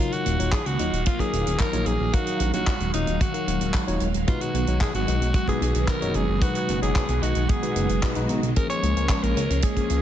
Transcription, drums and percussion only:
0.12 closed hi-hat soft
0.26 closed hi-hat medium
0.40 closed hi-hat medium
0.52 kick loud
0.52 clap loud
0.52 closed hi-hat loud
0.66 closed hi-hat soft
0.79 closed hi-hat medium
0.93 closed hi-hat medium
1.06 kick loud
1.06 closed hi-hat medium
1.19 kick medium
1.19 closed hi-hat soft
1.33 closed hi-hat medium
1.47 closed hi-hat medium
1.59 kick loud
1.59 clap loud
1.59 closed hi-hat medium
1.73 closed hi-hat medium
1.86 closed hi-hat medium
2.13 kick loud
2.13 closed hi-hat loud
2.27 closed hi-hat medium
2.40 closed hi-hat medium
2.53 closed hi-hat medium
2.67 kick loud
2.67 clap loud
2.67 closed hi-hat medium
2.80 closed hi-hat medium
2.93 closed hi-hat medium
3.07 closed hi-hat soft
3.21 kick loud
3.21 closed hi-hat loud
3.34 closed hi-hat soft
3.48 closed hi-hat medium
3.61 closed hi-hat medium
3.74 kick loud
3.74 clap loud
3.74 closed hi-hat medium
3.88 closed hi-hat soft
4.00 closed hi-hat medium
4.14 closed hi-hat soft
4.27 kick loud
4.27 closed hi-hat loud
4.41 closed hi-hat medium
4.55 closed hi-hat medium
4.67 closed hi-hat medium
4.81 kick loud
4.81 clap loud
4.81 closed hi-hat medium
4.94 closed hi-hat medium
5.08 closed hi-hat medium
5.22 closed hi-hat soft
5.34 kick loud
5.34 closed hi-hat medium
5.48 kick medium
5.48 closed hi-hat soft
5.62 closed hi-hat medium
5.74 closed hi-hat medium
5.88 kick loud
5.88 clap loud
5.88 closed hi-hat medium
6.02 closed hi-hat medium
6.14 closed hi-hat soft
6.42 kick loud
6.42 closed hi-hat loud
6.55 closed hi-hat medium
6.69 closed hi-hat medium
6.83 closed hi-hat soft
6.95 kick loud
6.95 clap loud
6.95 closed hi-hat medium
7.08 closed hi-hat medium
7.23 closed hi-hat medium
7.35 closed hi-hat soft
7.49 kick loud
7.49 closed hi-hat medium
7.63 closed hi-hat medium
7.76 closed hi-hat medium
7.89 closed hi-hat soft
8.03 kick loud
8.03 clap loud
8.03 closed hi-hat medium
8.15 closed hi-hat medium
8.29 closed hi-hat medium
8.43 closed hi-hat soft
8.56 kick loud
8.56 closed hi-hat loud
8.70 closed hi-hat soft
8.83 closed hi-hat medium
8.97 closed hi-hat medium
9.09 kick loud
9.09 clap loud
9.09 closed hi-hat medium
9.23 closed hi-hat medium
9.37 closed hi-hat medium
9.50 closed hi-hat medium
9.62 kick loud
9.62 closed hi-hat loud
9.76 kick medium
9.76 closed hi-hat medium
9.90 closed hi-hat medium

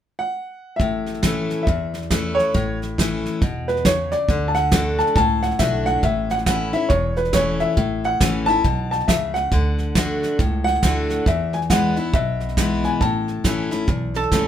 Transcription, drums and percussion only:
0.79 kick medium
0.79 snare soft
1.06 snare soft
1.14 snare soft
1.23 kick medium
1.23 snare loud
1.23 hi-hat pedal medium
1.50 snare soft
1.67 kick loud
1.67 snare soft
1.94 snare soft
2.02 snare soft
2.10 kick medium
2.10 snare loud
2.10 hi-hat pedal medium
2.38 snare soft
2.55 kick medium
2.55 snare soft
2.82 snare soft
2.98 kick medium
2.98 snare loud
2.98 hi-hat pedal medium
3.25 snare soft
3.42 kick loud
3.42 snare soft
3.68 snare soft
3.77 snare soft
3.85 kick medium
3.85 snare loud
3.85 hi-hat pedal medium
4.12 snare soft
4.28 kick loud
4.28 snare soft
4.55 snare soft
4.72 kick medium
4.72 snare loud
4.72 hi-hat pedal medium
4.99 snare soft
5.07 snare soft
5.15 kick loud
5.15 snare soft
5.43 snare soft
5.51 snare soft
5.59 kick medium
5.59 snare medium
5.59 hi-hat pedal medium
5.86 snare soft
6.03 kick medium
6.03 snare soft
6.30 snare soft
6.38 snare soft
6.46 kick medium
6.46 snare loud
6.46 hi-hat pedal medium
6.73 snare soft
6.89 kick loud
6.89 snare soft
7.16 snare soft
7.25 snare soft
7.33 kick medium
7.33 snare loud
7.33 hi-hat pedal medium
7.60 snare soft
7.77 kick medium
7.77 snare soft
8.04 snare soft
8.21 kick medium
8.21 snare loud
8.21 hi-hat pedal medium
8.48 snare soft
8.64 kick loud
8.64 snare soft
8.92 snare soft
9.00 snare soft
9.08 kick medium
9.08 snare loud
9.08 hi-hat pedal medium
9.35 snare soft
9.52 kick loud
9.52 snare soft
9.78 snare soft
9.95 kick medium
9.95 snare loud
9.95 hi-hat pedal medium
10.23 snare soft
10.39 kick loud
10.39 snare soft
10.67 snare soft
10.75 snare soft
10.83 kick medium
10.83 snare loud
10.83 hi-hat pedal medium
11.10 snare soft
11.26 kick loud
11.26 snare soft
11.53 snare soft
11.62 snare soft
11.70 kick medium
11.70 snare loud
11.70 hi-hat pedal medium
11.96 snare soft
12.14 kick loud
12.14 snare soft
12.40 snare soft
12.49 snare soft
12.57 kick medium
12.57 snare loud
12.57 hi-hat pedal medium
12.84 snare soft
13.01 kick medium
13.01 snare soft
13.28 snare soft
13.44 kick medium
13.44 snare loud
13.44 hi-hat pedal medium
13.71 snare soft
13.87 kick loud
13.87 snare soft
14.14 snare soft
14.23 snare soft
14.32 kick medium
14.32 snare medium
14.32 hi-hat pedal medium

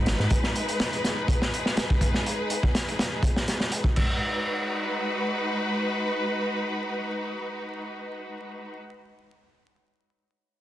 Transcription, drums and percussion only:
0.06 snare loud
0.06 closed hi-hat medium
0.19 snare soft
0.19 muted conga soft
0.30 kick loud
0.30 closed hi-hat medium
0.44 snare soft
0.56 closed hi-hat medium
0.68 closed hi-hat soft
0.80 snare loud
0.80 closed hi-hat medium
0.93 closed hi-hat soft
1.04 snare soft
1.04 closed hi-hat medium
1.28 kick loud
1.28 closed hi-hat medium
1.42 snare medium
1.54 closed hi-hat medium
1.66 snare soft
1.77 snare loud
1.77 closed hi-hat medium
1.90 kick medium
2.01 kick medium
2.01 closed hi-hat medium
2.14 snare soft
2.26 closed hi-hat medium
2.50 closed hi-hat medium
2.63 kick loud
2.75 snare loud
2.75 closed hi-hat medium
2.88 closed hi-hat soft
2.99 snare loud
2.99 closed hi-hat medium
3.23 kick loud
3.23 closed hi-hat medium
3.36 snare medium
3.48 snare soft
3.48 closed hi-hat medium
3.60 snare soft
3.72 closed hi-hat medium
3.84 kick medium
3.96 kick loud
3.96 crash medium

